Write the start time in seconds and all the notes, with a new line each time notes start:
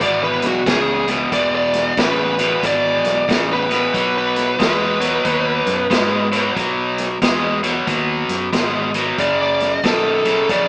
0.01 G#1 E2 B2 D5, kick, closed hi-hat
0.24 B4
0.42 B1, snare, closed hi-hat
0.47 F#4
0.66 C#2 E2 C#3 G#4, kick, snare, closed hi-hat
1.07 E2 B2, snare, closed hi-hat
1.31 E1 E2 B2 D5, kick, snare, closed hi-hat
1.55 D5
1.73 snare, closed hi-hat
1.97 A1 E2 C#3 B4, kick, snare, closed hi-hat
2.39 E2 B2, snare, closed hi-hat
2.62 G#1 E2 B2 D5, kick, snare, closed hi-hat
3.04 B1, snare, closed hi-hat
3.28 A1 E2 C#3, kick, snare, closed hi-hat
3.52 B4
3.69 E2 B2, snare, closed hi-hat
3.93 B1 B2 F#3, kick, snare, closed hi-hat
4.18 B4
4.36 snare, closed hi-hat
4.59 E2 B2 G#3 B4, kick, snare, closed hi-hat
5.00 B2 F#3, snare, closed hi-hat
5.25 D#2 B2 F#3, kick, closed hi-hat
5.66 F#2, snare, closed hi-hat
5.90 G#2 B2 G#3, kick, snare, closed hi-hat
6.32 B2 F#3, snare, closed hi-hat
6.56 B1 B2 F#3, kick, snare, closed hi-hat
6.98 snare, closed hi-hat
7.22 E2 B2 G#3, kick, snare, closed hi-hat
7.63 B2 F#3, snare, closed hi-hat
7.87 D#2 B2 F#3, kick, snare, closed hi-hat
8.29 F#2, snare, closed hi-hat
8.53 G#1 B2 G#3, kick, snare, closed hi-hat
8.94 B2 F#3, snare, closed hi-hat
9.18 F#1 F#2 C#3 D5, kick, closed hi-hat
9.42 D5
9.60 snare, closed hi-hat
9.83 B1 F#2 D#3 A4, kick, snare, closed hi-hat
10.25 F#2 C#3, snare, closed hi-hat
10.49 A#1 F#2 C#3 D5, kick, snare, closed hi-hat